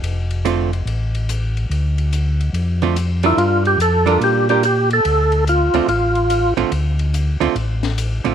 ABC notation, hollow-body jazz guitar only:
X:1
M:4/4
L:1/8
Q:"Swing" 1/4=144
K:Dm
V:1 name="Hollow-body jazz guitar"
z2 [D,A,CF] z4 z | z4 z [D,A,CF] z [G,DFB]- | [G,DFB]2 z [G,DFB]2 [G,DFB] z2 | z3 [D,A,CF] z3 [D,A,CF] |
z3 [D,A,CF] z3 [D,A,CF] |]